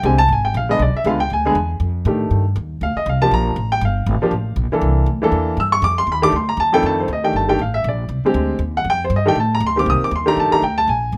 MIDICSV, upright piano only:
0, 0, Header, 1, 2, 480
1, 0, Start_track
1, 0, Tempo, 251889
1, 1521, Time_signature, 4, 2, 24, 8
1, 21297, End_track
2, 0, Start_track
2, 0, Title_t, "Upright piano"
2, 0, Program_c, 0, 0
2, 78, Note_on_c, 0, 50, 67
2, 87, Note_on_c, 0, 56, 64
2, 93, Note_on_c, 0, 60, 67
2, 103, Note_on_c, 0, 80, 85
2, 109, Note_on_c, 0, 67, 68
2, 328, Note_off_c, 0, 50, 0
2, 333, Note_off_c, 0, 56, 0
2, 335, Note_off_c, 0, 60, 0
2, 343, Note_off_c, 0, 67, 0
2, 351, Note_on_c, 0, 81, 117
2, 360, Note_off_c, 0, 80, 0
2, 551, Note_off_c, 0, 81, 0
2, 618, Note_on_c, 0, 80, 76
2, 853, Note_on_c, 0, 79, 87
2, 858, Note_off_c, 0, 80, 0
2, 1043, Note_off_c, 0, 79, 0
2, 1085, Note_on_c, 0, 77, 86
2, 1317, Note_on_c, 0, 50, 71
2, 1319, Note_on_c, 0, 56, 67
2, 1331, Note_off_c, 0, 77, 0
2, 1331, Note_on_c, 0, 59, 69
2, 1345, Note_on_c, 0, 62, 75
2, 1351, Note_on_c, 0, 75, 99
2, 1500, Note_off_c, 0, 50, 0
2, 1501, Note_off_c, 0, 56, 0
2, 1508, Note_off_c, 0, 59, 0
2, 1514, Note_off_c, 0, 62, 0
2, 1532, Note_off_c, 0, 75, 0
2, 1566, Note_on_c, 0, 74, 76
2, 1812, Note_off_c, 0, 74, 0
2, 1838, Note_on_c, 0, 76, 83
2, 2007, Note_on_c, 0, 50, 77
2, 2013, Note_on_c, 0, 56, 69
2, 2016, Note_off_c, 0, 76, 0
2, 2019, Note_on_c, 0, 59, 68
2, 2033, Note_on_c, 0, 65, 81
2, 2041, Note_on_c, 0, 77, 93
2, 2252, Note_off_c, 0, 50, 0
2, 2255, Note_off_c, 0, 56, 0
2, 2258, Note_off_c, 0, 59, 0
2, 2265, Note_off_c, 0, 65, 0
2, 2289, Note_off_c, 0, 77, 0
2, 2292, Note_on_c, 0, 79, 102
2, 2482, Note_off_c, 0, 79, 0
2, 2538, Note_on_c, 0, 80, 77
2, 2769, Note_on_c, 0, 50, 87
2, 2780, Note_on_c, 0, 56, 76
2, 2780, Note_on_c, 0, 59, 69
2, 2794, Note_on_c, 0, 68, 89
2, 2946, Note_off_c, 0, 50, 0
2, 2952, Note_off_c, 0, 56, 0
2, 2952, Note_off_c, 0, 59, 0
2, 2958, Note_off_c, 0, 68, 0
2, 3214, Note_off_c, 0, 80, 0
2, 3935, Note_on_c, 0, 51, 59
2, 3939, Note_on_c, 0, 57, 56
2, 3955, Note_on_c, 0, 62, 57
2, 3957, Note_on_c, 0, 67, 70
2, 4628, Note_off_c, 0, 51, 0
2, 4630, Note_off_c, 0, 57, 0
2, 4637, Note_off_c, 0, 62, 0
2, 4639, Note_off_c, 0, 67, 0
2, 5393, Note_on_c, 0, 77, 85
2, 5643, Note_off_c, 0, 77, 0
2, 5655, Note_on_c, 0, 75, 80
2, 5842, Note_off_c, 0, 75, 0
2, 5894, Note_on_c, 0, 77, 78
2, 6130, Note_on_c, 0, 53, 68
2, 6130, Note_on_c, 0, 81, 108
2, 6134, Note_off_c, 0, 77, 0
2, 6135, Note_on_c, 0, 58, 67
2, 6152, Note_on_c, 0, 62, 64
2, 6159, Note_on_c, 0, 67, 76
2, 6319, Note_off_c, 0, 81, 0
2, 6358, Note_on_c, 0, 82, 94
2, 6763, Note_off_c, 0, 53, 0
2, 6766, Note_off_c, 0, 58, 0
2, 6774, Note_off_c, 0, 62, 0
2, 6778, Note_off_c, 0, 67, 0
2, 7041, Note_off_c, 0, 82, 0
2, 7088, Note_on_c, 0, 79, 104
2, 7277, Note_off_c, 0, 79, 0
2, 7336, Note_on_c, 0, 77, 85
2, 8038, Note_on_c, 0, 53, 78
2, 8054, Note_on_c, 0, 58, 75
2, 8055, Note_on_c, 0, 62, 71
2, 8070, Note_on_c, 0, 67, 81
2, 8217, Note_off_c, 0, 53, 0
2, 8225, Note_off_c, 0, 58, 0
2, 8226, Note_off_c, 0, 62, 0
2, 8233, Note_off_c, 0, 67, 0
2, 8667, Note_off_c, 0, 77, 0
2, 8996, Note_on_c, 0, 52, 76
2, 9004, Note_on_c, 0, 58, 69
2, 9012, Note_on_c, 0, 62, 75
2, 9026, Note_on_c, 0, 69, 81
2, 9634, Note_off_c, 0, 52, 0
2, 9638, Note_off_c, 0, 58, 0
2, 9642, Note_off_c, 0, 62, 0
2, 9649, Note_off_c, 0, 69, 0
2, 9942, Note_on_c, 0, 52, 80
2, 9963, Note_on_c, 0, 58, 73
2, 9964, Note_on_c, 0, 62, 77
2, 9983, Note_on_c, 0, 69, 91
2, 10586, Note_off_c, 0, 52, 0
2, 10597, Note_off_c, 0, 58, 0
2, 10597, Note_off_c, 0, 62, 0
2, 10607, Note_off_c, 0, 69, 0
2, 10670, Note_on_c, 0, 88, 90
2, 10906, Note_on_c, 0, 85, 102
2, 10918, Note_off_c, 0, 88, 0
2, 11103, Note_off_c, 0, 85, 0
2, 11130, Note_on_c, 0, 86, 107
2, 11387, Note_off_c, 0, 86, 0
2, 11400, Note_on_c, 0, 84, 103
2, 11590, Note_off_c, 0, 84, 0
2, 11658, Note_on_c, 0, 83, 95
2, 11856, Note_on_c, 0, 51, 88
2, 11862, Note_on_c, 0, 57, 77
2, 11879, Note_on_c, 0, 86, 122
2, 11882, Note_on_c, 0, 62, 82
2, 11891, Note_on_c, 0, 67, 91
2, 11892, Note_off_c, 0, 83, 0
2, 12043, Note_off_c, 0, 51, 0
2, 12046, Note_off_c, 0, 57, 0
2, 12056, Note_off_c, 0, 62, 0
2, 12061, Note_off_c, 0, 67, 0
2, 12069, Note_off_c, 0, 86, 0
2, 12119, Note_on_c, 0, 84, 81
2, 12362, Note_off_c, 0, 84, 0
2, 12363, Note_on_c, 0, 82, 97
2, 12551, Note_off_c, 0, 82, 0
2, 12575, Note_on_c, 0, 81, 94
2, 12817, Note_on_c, 0, 41, 84
2, 12829, Note_off_c, 0, 81, 0
2, 12833, Note_on_c, 0, 51, 75
2, 12836, Note_on_c, 0, 57, 77
2, 12838, Note_on_c, 0, 62, 68
2, 12840, Note_on_c, 0, 79, 112
2, 12856, Note_on_c, 0, 69, 93
2, 13030, Note_off_c, 0, 79, 0
2, 13075, Note_on_c, 0, 81, 88
2, 13320, Note_off_c, 0, 81, 0
2, 13345, Note_on_c, 0, 72, 59
2, 13463, Note_off_c, 0, 41, 0
2, 13471, Note_off_c, 0, 51, 0
2, 13473, Note_off_c, 0, 57, 0
2, 13474, Note_off_c, 0, 62, 0
2, 13483, Note_off_c, 0, 69, 0
2, 13523, Note_off_c, 0, 72, 0
2, 13582, Note_on_c, 0, 75, 76
2, 13792, Note_on_c, 0, 51, 63
2, 13800, Note_on_c, 0, 57, 62
2, 13806, Note_on_c, 0, 79, 92
2, 13809, Note_on_c, 0, 62, 63
2, 13814, Note_off_c, 0, 75, 0
2, 13826, Note_on_c, 0, 67, 67
2, 13993, Note_off_c, 0, 79, 0
2, 14027, Note_on_c, 0, 81, 79
2, 14236, Note_off_c, 0, 51, 0
2, 14242, Note_off_c, 0, 57, 0
2, 14249, Note_off_c, 0, 62, 0
2, 14258, Note_off_c, 0, 67, 0
2, 14264, Note_on_c, 0, 51, 74
2, 14270, Note_on_c, 0, 57, 66
2, 14276, Note_off_c, 0, 81, 0
2, 14280, Note_on_c, 0, 79, 93
2, 14285, Note_on_c, 0, 62, 69
2, 14295, Note_on_c, 0, 67, 87
2, 14448, Note_off_c, 0, 51, 0
2, 14451, Note_off_c, 0, 57, 0
2, 14458, Note_off_c, 0, 62, 0
2, 14463, Note_off_c, 0, 67, 0
2, 14470, Note_off_c, 0, 79, 0
2, 14511, Note_on_c, 0, 77, 73
2, 14752, Note_on_c, 0, 76, 92
2, 14759, Note_off_c, 0, 77, 0
2, 14946, Note_off_c, 0, 76, 0
2, 15025, Note_on_c, 0, 74, 67
2, 15694, Note_off_c, 0, 74, 0
2, 15716, Note_on_c, 0, 50, 72
2, 15731, Note_on_c, 0, 56, 69
2, 15734, Note_on_c, 0, 60, 73
2, 15746, Note_on_c, 0, 67, 89
2, 16356, Note_off_c, 0, 50, 0
2, 16363, Note_off_c, 0, 56, 0
2, 16364, Note_off_c, 0, 60, 0
2, 16370, Note_off_c, 0, 67, 0
2, 16714, Note_on_c, 0, 78, 96
2, 16890, Note_off_c, 0, 78, 0
2, 16956, Note_on_c, 0, 79, 107
2, 17184, Note_off_c, 0, 79, 0
2, 17236, Note_on_c, 0, 72, 77
2, 17392, Note_off_c, 0, 72, 0
2, 17459, Note_on_c, 0, 75, 77
2, 17639, Note_on_c, 0, 51, 80
2, 17651, Note_on_c, 0, 57, 73
2, 17654, Note_on_c, 0, 62, 73
2, 17665, Note_on_c, 0, 67, 79
2, 17676, Note_off_c, 0, 75, 0
2, 17691, Note_on_c, 0, 79, 104
2, 17818, Note_off_c, 0, 51, 0
2, 17824, Note_off_c, 0, 57, 0
2, 17826, Note_off_c, 0, 62, 0
2, 17831, Note_off_c, 0, 67, 0
2, 17860, Note_off_c, 0, 79, 0
2, 17910, Note_on_c, 0, 81, 79
2, 18142, Note_off_c, 0, 81, 0
2, 18191, Note_on_c, 0, 82, 99
2, 18351, Note_off_c, 0, 82, 0
2, 18418, Note_on_c, 0, 84, 95
2, 18600, Note_on_c, 0, 51, 67
2, 18604, Note_on_c, 0, 58, 67
2, 18611, Note_on_c, 0, 60, 62
2, 18623, Note_on_c, 0, 67, 81
2, 18637, Note_off_c, 0, 84, 0
2, 18660, Note_on_c, 0, 86, 95
2, 18825, Note_off_c, 0, 86, 0
2, 18861, Note_on_c, 0, 87, 98
2, 19098, Note_off_c, 0, 87, 0
2, 19138, Note_on_c, 0, 86, 92
2, 19241, Note_off_c, 0, 51, 0
2, 19243, Note_off_c, 0, 58, 0
2, 19246, Note_off_c, 0, 60, 0
2, 19252, Note_off_c, 0, 67, 0
2, 19305, Note_off_c, 0, 86, 0
2, 19353, Note_on_c, 0, 84, 86
2, 19547, Note_on_c, 0, 51, 81
2, 19553, Note_on_c, 0, 57, 70
2, 19563, Note_on_c, 0, 62, 78
2, 19574, Note_on_c, 0, 67, 92
2, 19585, Note_off_c, 0, 84, 0
2, 19590, Note_on_c, 0, 82, 104
2, 19771, Note_off_c, 0, 82, 0
2, 19813, Note_on_c, 0, 81, 82
2, 20004, Note_off_c, 0, 51, 0
2, 20007, Note_off_c, 0, 57, 0
2, 20012, Note_off_c, 0, 62, 0
2, 20018, Note_off_c, 0, 67, 0
2, 20033, Note_on_c, 0, 51, 77
2, 20046, Note_on_c, 0, 57, 59
2, 20052, Note_on_c, 0, 82, 105
2, 20055, Note_off_c, 0, 81, 0
2, 20058, Note_on_c, 0, 62, 70
2, 20068, Note_on_c, 0, 67, 82
2, 20218, Note_off_c, 0, 51, 0
2, 20225, Note_off_c, 0, 57, 0
2, 20230, Note_off_c, 0, 62, 0
2, 20236, Note_off_c, 0, 67, 0
2, 20242, Note_off_c, 0, 82, 0
2, 20269, Note_on_c, 0, 79, 83
2, 20523, Note_off_c, 0, 79, 0
2, 20536, Note_on_c, 0, 81, 106
2, 20725, Note_off_c, 0, 81, 0
2, 20753, Note_on_c, 0, 80, 79
2, 21186, Note_off_c, 0, 80, 0
2, 21297, End_track
0, 0, End_of_file